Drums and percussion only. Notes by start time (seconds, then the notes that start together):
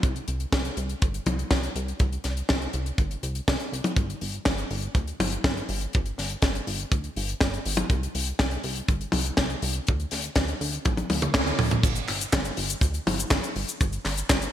0.03 kick, closed hi-hat
0.16 closed hi-hat
0.28 closed hi-hat
0.40 closed hi-hat
0.52 kick, snare, closed hi-hat, high tom
0.65 closed hi-hat
0.77 closed hi-hat
0.89 closed hi-hat
1.02 kick, closed hi-hat
1.14 closed hi-hat
1.26 closed hi-hat, high tom
1.39 closed hi-hat
1.51 kick, snare, closed hi-hat, high tom
1.63 closed hi-hat
1.76 closed hi-hat
1.88 closed hi-hat
2.00 kick, closed hi-hat
2.13 closed hi-hat
2.24 snare, closed hi-hat
2.37 closed hi-hat
2.49 kick, snare, closed hi-hat, high tom
2.62 closed hi-hat
2.73 closed hi-hat
2.86 closed hi-hat
2.98 kick, closed hi-hat
3.11 closed hi-hat
3.23 closed hi-hat
3.35 closed hi-hat
3.48 kick, snare, closed hi-hat
3.60 closed hi-hat
3.73 closed hi-hat
3.84 closed hi-hat, high tom
3.96 kick, closed hi-hat
4.10 closed hi-hat
4.21 open hi-hat
4.34 closed hi-hat
4.45 kick, snare, closed hi-hat, high tom
4.58 closed hi-hat
4.71 open hi-hat
4.82 closed hi-hat
4.95 kick, closed hi-hat
5.08 closed hi-hat
5.20 open hi-hat, high tom
5.32 closed hi-hat
5.44 kick, snare, closed hi-hat, high tom
5.57 closed hi-hat
5.69 open hi-hat
5.81 closed hi-hat
5.93 kick, closed hi-hat
6.06 closed hi-hat
6.18 snare, open hi-hat
6.30 closed hi-hat
6.42 kick, snare, closed hi-hat
6.55 closed hi-hat
6.67 open hi-hat
6.80 closed hi-hat
6.92 kick, closed hi-hat
7.04 closed hi-hat
7.16 open hi-hat
7.29 closed hi-hat
7.41 kick, snare, closed hi-hat
7.54 closed hi-hat
7.65 open hi-hat
7.77 closed hi-hat, high tom
7.90 kick, closed hi-hat
8.03 closed hi-hat
8.15 open hi-hat
8.27 closed hi-hat
8.39 kick, snare, closed hi-hat, high tom
8.51 closed hi-hat
8.64 open hi-hat
8.76 closed hi-hat
8.88 kick, closed hi-hat
9.01 closed hi-hat
9.12 open hi-hat, high tom
9.25 closed hi-hat
9.37 kick, snare, closed hi-hat, high tom
9.50 closed hi-hat
9.62 open hi-hat
9.74 closed hi-hat
9.87 kick, closed hi-hat
10.00 closed hi-hat
10.11 snare, open hi-hat
10.24 closed hi-hat
10.35 kick, snare, closed hi-hat, high tom
10.48 closed hi-hat
10.61 open hi-hat
10.73 closed hi-hat
10.85 kick, closed hi-hat, high tom
10.97 closed hi-hat, high tom
11.10 open hi-hat, high tom
11.22 closed hi-hat, mid tom
11.34 kick, snare, closed hi-hat, mid tom
11.47 closed hi-hat
11.59 mid tom, open hi-hat
11.71 closed hi-hat, mid tom
11.83 kick, closed hi-hat, crash, cabasa
11.96 closed hi-hat, cabasa
12.08 clap, open hi-hat
12.21 closed hi-hat, cabasa
12.33 kick, snare, clap, closed hi-hat, high tom, cabasa
12.45 closed hi-hat, cabasa
12.57 open hi-hat
12.70 closed hi-hat, cabasa
12.81 kick, closed hi-hat, cabasa
12.94 closed hi-hat, cabasa
13.07 open hi-hat, high tom
13.19 closed hi-hat, cabasa
13.30 kick, snare, clap, closed hi-hat, high tom, cabasa
13.44 closed hi-hat, cabasa
13.56 open hi-hat
13.68 closed hi-hat, cabasa
13.81 kick, closed hi-hat, cabasa
13.93 closed hi-hat, cabasa
14.05 snare, clap, open hi-hat
14.17 closed hi-hat, cabasa
14.30 kick, snare, clap, closed hi-hat, cabasa
14.42 closed hi-hat, cabasa